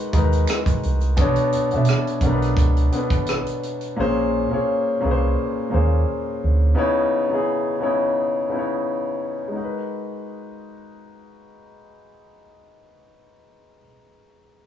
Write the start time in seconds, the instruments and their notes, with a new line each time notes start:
Already playing: grand piano G#3 D#4 F#4 A#4 B4
0.13 fingered electric bass D#2, grand piano G#3 D#4 F#4 A#4, kick, closed hi-hat
0.17 grand piano B4
0.32 closed hi-hat, shaker
0.47 finger snap, cross-stick, closed hi-hat, shaker
0.66 kick, closed hi-hat, shaker
0.83 fingered electric bass C2, closed hi-hat, shaker
1.01 closed hi-hat, shaker
1.17 fingered electric bass B1, grand piano B2 B3 D4 A4 C#5, kick, closed hi-hat
1.36 closed hi-hat
1.52 muted fingered electric bass stroke, closed hi-hat
1.71 grand piano B2 B3 D4, fingered electric bass B2, closed hi-hat
1.75 grand piano A4 E5
1.85 closed hi-hat
1.89 cross-stick
2.07 closed hi-hat
2.21 fingered electric bass B1, grand piano B2 B3 D4, kick, closed hi-hat
2.25 grand piano A4 A#4
2.33 grand piano B4
2.42 cross-stick, closed hi-hat
2.57 fingered electric bass C#2, kick, closed hi-hat
2.77 closed hi-hat
2.92 grand piano B2 B3 D4 A4 B4, closed hi-hat
3.10 fingered electric bass G#1, kick, closed hi-hat
3.26 cross-stick, closed hi-hat
3.46 closed hi-hat
3.63 closed hi-hat
3.81 closed hi-hat
3.96 fingered electric bass A#1, grand piano A#2 A#3 C#4 G#4
4.00 grand piano C5
4.50 grand piano A#2 A#3 C#4 G#4 C#5, muted fingered electric bass stroke
5.00 grand piano A#2 A#3 C#4 G#4
5.04 fingered electric bass C2, grand piano B4
5.11 grand piano C5
5.70 fingered electric bass D#2, grand piano A#2 A#3 C#4 G#4
5.74 grand piano C5
6.44 fingered electric bass D2
6.75 grand piano C#3 B3 D#4 E4 C#5
7.29 grand piano C#3 B3 D#4 E4
7.34 grand piano G#4
7.80 grand piano C#3 B3 D#4 E4 C#5
8.49 grand piano C#3 B3 D#4 E4 B4
8.59 grand piano C#5
9.48 grand piano G#3 D#4
9.56 grand piano F#4 A#4
9.64 grand piano B4